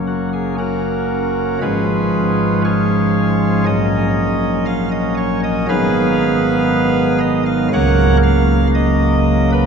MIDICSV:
0, 0, Header, 1, 2, 480
1, 0, Start_track
1, 0, Key_signature, 6, "major"
1, 0, Tempo, 1032702
1, 1705, Time_signature, 4, 2, 24, 8
1, 1706, Tempo, 1018676
1, 4529, End_track
2, 0, Start_track
2, 0, Title_t, "Pipe organ"
2, 0, Program_c, 0, 19
2, 0, Note_on_c, 0, 30, 63
2, 0, Note_on_c, 0, 42, 64
2, 0, Note_on_c, 0, 54, 54
2, 0, Note_on_c, 0, 58, 54
2, 0, Note_on_c, 0, 61, 50
2, 33, Note_on_c, 0, 66, 80
2, 132, Note_off_c, 0, 66, 0
2, 153, Note_on_c, 0, 68, 76
2, 253, Note_off_c, 0, 68, 0
2, 260, Note_off_c, 0, 61, 0
2, 270, Note_on_c, 0, 61, 67
2, 270, Note_on_c, 0, 70, 91
2, 272, Note_on_c, 0, 66, 74
2, 732, Note_off_c, 0, 54, 0
2, 733, Note_off_c, 0, 30, 0
2, 733, Note_off_c, 0, 42, 0
2, 733, Note_off_c, 0, 58, 0
2, 736, Note_off_c, 0, 61, 0
2, 737, Note_off_c, 0, 66, 0
2, 737, Note_off_c, 0, 70, 0
2, 750, Note_on_c, 0, 53, 49
2, 750, Note_on_c, 0, 71, 90
2, 751, Note_on_c, 0, 44, 64
2, 751, Note_on_c, 0, 56, 53
2, 752, Note_on_c, 0, 32, 59
2, 752, Note_on_c, 0, 65, 68
2, 753, Note_on_c, 0, 61, 51
2, 755, Note_on_c, 0, 68, 71
2, 1215, Note_off_c, 0, 71, 0
2, 1216, Note_off_c, 0, 65, 0
2, 1217, Note_off_c, 0, 68, 0
2, 1229, Note_on_c, 0, 73, 97
2, 1230, Note_on_c, 0, 65, 80
2, 1231, Note_on_c, 0, 68, 67
2, 1687, Note_off_c, 0, 44, 0
2, 1687, Note_off_c, 0, 53, 0
2, 1687, Note_off_c, 0, 56, 0
2, 1688, Note_off_c, 0, 32, 0
2, 1688, Note_off_c, 0, 61, 0
2, 1691, Note_off_c, 0, 65, 0
2, 1691, Note_off_c, 0, 73, 0
2, 1692, Note_off_c, 0, 68, 0
2, 1700, Note_on_c, 0, 54, 55
2, 1701, Note_on_c, 0, 75, 119
2, 1702, Note_on_c, 0, 34, 67
2, 1703, Note_on_c, 0, 61, 56
2, 1704, Note_on_c, 0, 46, 67
2, 2167, Note_off_c, 0, 75, 0
2, 2172, Note_on_c, 0, 77, 111
2, 2279, Note_off_c, 0, 77, 0
2, 2293, Note_on_c, 0, 75, 95
2, 2400, Note_off_c, 0, 75, 0
2, 2414, Note_on_c, 0, 73, 120
2, 2521, Note_off_c, 0, 73, 0
2, 2538, Note_on_c, 0, 75, 120
2, 2643, Note_off_c, 0, 54, 0
2, 2643, Note_off_c, 0, 75, 0
2, 2645, Note_off_c, 0, 34, 0
2, 2645, Note_off_c, 0, 46, 0
2, 2645, Note_off_c, 0, 61, 0
2, 2653, Note_on_c, 0, 54, 55
2, 2655, Note_on_c, 0, 44, 70
2, 2656, Note_on_c, 0, 32, 77
2, 2657, Note_on_c, 0, 51, 58
2, 2657, Note_on_c, 0, 59, 57
2, 2657, Note_on_c, 0, 68, 95
2, 2658, Note_on_c, 0, 77, 119
2, 2659, Note_on_c, 0, 71, 97
2, 3360, Note_off_c, 0, 68, 0
2, 3360, Note_off_c, 0, 77, 0
2, 3361, Note_off_c, 0, 71, 0
2, 3370, Note_on_c, 0, 75, 101
2, 3477, Note_off_c, 0, 75, 0
2, 3490, Note_on_c, 0, 77, 106
2, 3597, Note_off_c, 0, 77, 0
2, 3598, Note_off_c, 0, 54, 0
2, 3599, Note_off_c, 0, 32, 0
2, 3599, Note_off_c, 0, 44, 0
2, 3599, Note_off_c, 0, 59, 0
2, 3600, Note_off_c, 0, 51, 0
2, 3616, Note_on_c, 0, 54, 71
2, 3619, Note_on_c, 0, 49, 78
2, 3619, Note_on_c, 0, 58, 72
2, 3619, Note_on_c, 0, 78, 127
2, 3620, Note_on_c, 0, 37, 83
2, 3621, Note_on_c, 0, 25, 85
2, 3621, Note_on_c, 0, 70, 109
2, 3621, Note_on_c, 0, 73, 105
2, 3824, Note_off_c, 0, 78, 0
2, 3825, Note_off_c, 0, 70, 0
2, 3825, Note_off_c, 0, 73, 0
2, 3855, Note_on_c, 0, 77, 127
2, 4062, Note_off_c, 0, 77, 0
2, 4097, Note_on_c, 0, 75, 127
2, 4453, Note_off_c, 0, 75, 0
2, 4464, Note_on_c, 0, 71, 127
2, 4529, Note_off_c, 0, 25, 0
2, 4529, Note_off_c, 0, 37, 0
2, 4529, Note_off_c, 0, 49, 0
2, 4529, Note_off_c, 0, 54, 0
2, 4529, Note_off_c, 0, 58, 0
2, 4529, Note_off_c, 0, 71, 0
2, 4529, End_track
0, 0, End_of_file